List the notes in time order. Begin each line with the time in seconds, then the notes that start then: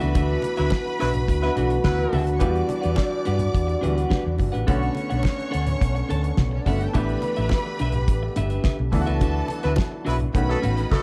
Already playing: E3 A3 B3 D4 F#4 B4 B5
0.00 C#2 D4 F#4 B4 E5, closed hi-hat
0.15 D2 D4 F#4 B4 E5, kick, closed hi-hat, muted conga
0.42 muted clean electric guitar stroke, closed hi-hat, muted conga
0.57 D2 F#3 B3 D4 E4 F#4 B4 E5, closed hi-hat
0.70 muted clean electric guitar stroke, kick, snare, high conga
0.86 muted clean electric guitar stroke, closed hi-hat
0.99 B1 F#3 B3 D4 E4 F#4 B4 E5, open hi-hat
1.14 muted clean electric guitar stroke, closed hi-hat, low conga
1.28 D2, muted clean electric guitar stroke, kick, closed hi-hat
1.42 F#3 B3 D4 E4 F#4 B4 E5, closed hi-hat
1.55 B1 E3 A3 B3 D4 F#4 B4 F#5, closed hi-hat, muted conga, low conga
1.70 muted clean electric guitar stroke, closed hi-hat
1.84 D2 F#3 B3 E4 B4, kick, snare, high conga
1.98 muted clean electric guitar stroke
2.13 D2 D4 F#4 G4 B4 E5 G5, open hi-hat, high conga
2.21 A4 A5
2.25 B4 B5, muted clean electric guitar stroke, closed hi-hat
2.35 C#5 C#6
2.39 E2 E3 G3 B3 D4 F4 G4 B4 D5 F#5 D6, kick, closed hi-hat, muted conga
2.49 F#4
2.55 closed hi-hat
2.69 muted clean electric guitar stroke, closed hi-hat, muted conga
2.81 E2 D4 G4 B4 F#5, closed hi-hat
2.96 muted clean electric guitar stroke, kick, snare, high conga
3.11 muted clean electric guitar stroke
3.25 G2 D4 G4 B4 F#5, closed hi-hat
3.39 muted clean electric guitar stroke, closed hi-hat, low conga
3.53 E2, muted clean electric guitar stroke, kick, closed hi-hat
3.67 muted clean electric guitar stroke, closed hi-hat
3.81 D2 E3 G3 B3 D4 F#4 G4 B4 F#5, closed hi-hat, muted conga, low conga
3.95 D4 G4 B4 F#5, closed hi-hat
4.09 D4 G4 B4 F#5, kick, snare, high conga
4.25 E2, muted clean electric guitar stroke
4.38 G1, muted clean electric guitar stroke, kick, open hi-hat, high conga
4.52 A1 D4 G4 B4 F#5, closed hi-hat
4.66 B1 D3 A3 B3 C#4 D4 F#4 A4 C#5 F#5 C#6, kick, closed hi-hat, muted conga
4.83 closed hi-hat
4.95 muted clean electric guitar stroke, closed hi-hat, muted conga
5.10 B1 D4 A4 C#5 F#5, closed hi-hat
5.23 muted clean electric guitar stroke, kick, snare, high conga
5.38 muted clean electric guitar stroke, closed hi-hat
5.51 D2 D4 A4 C#5 F#5, closed hi-hat
5.66 muted clean electric guitar stroke, closed hi-hat, low conga
5.80 B1, muted clean electric guitar stroke, kick, closed hi-hat
5.95 muted clean electric guitar stroke, closed hi-hat
6.09 D2 D4 A4 C#5 A5, closed hi-hat, low conga
6.23 muted clean electric guitar stroke, closed hi-hat
6.37 B1, kick, snare, high conga
6.51 C#4 C#5, muted clean electric guitar stroke
6.61 D3 D4 D5
6.66 G1 A3 B3 C#4 D4 E4 A4 C#5 E5 F#5, kick, snare, open hi-hat, high conga
6.76 F#4 F#5
6.80 G4 G5, muted clean electric guitar stroke, closed hi-hat
6.88 A4 A5
6.93 A1 D3 E3 A3 B3 D4 G4 B4 E5 B5, kick, closed hi-hat, muted conga
7.09 closed hi-hat
7.22 muted clean electric guitar stroke, closed hi-hat, muted conga
7.36 A1 D4 G4 B4 E5, closed hi-hat
7.49 muted clean electric guitar stroke, kick, snare, high conga
7.66 muted clean electric guitar stroke
7.79 B1 D4 G4 B4 E5, closed hi-hat
7.92 muted clean electric guitar stroke, closed hi-hat, low conga
8.08 A1, muted clean electric guitar stroke, kick, closed hi-hat
8.23 muted clean electric guitar stroke
8.36 G1 D4 G4 B4 E5, closed hi-hat, low conga
8.50 D4 G4 B4 E5, closed hi-hat
8.63 D4 G4 B4 E5, kick, snare, high conga
8.78 B1, muted clean electric guitar stroke
8.91 D2 D3 E3 F#3 A3 B3 D4 E4 A4 A5, muted clean electric guitar stroke, kick, snare, open hi-hat, high conga
9.01 F#4
9.07 C#2 D4 F#4 B4 E5, closed hi-hat
9.21 D2 D4 F#4 B4 E5, kick, closed hi-hat, muted conga
9.48 muted clean electric guitar stroke, closed hi-hat, muted conga
9.63 D2 F#3 B3 D4 E4 F#4 B4 E5, closed hi-hat
9.76 muted clean electric guitar stroke, kick, snare, high conga
9.91 muted clean electric guitar stroke
10.05 B1 F#3 B3 D4 E4 F#4 B4 E5, open hi-hat
10.19 muted clean electric guitar stroke, closed hi-hat, low conga
10.33 B1 C#3 D#3 A3 B3 C#4 D#4 F#4 B4 B5, muted clean electric guitar stroke, kick, closed hi-hat
10.49 F#3 A3 D#4 A4, muted clean electric guitar stroke
10.62 A1 C#4 F#4 A4 F#5, closed hi-hat, muted conga, low conga
10.77 C#4 F#4 A4 D#5, closed hi-hat
10.92 F#3 A3 D#4 A4, kick, snare, high conga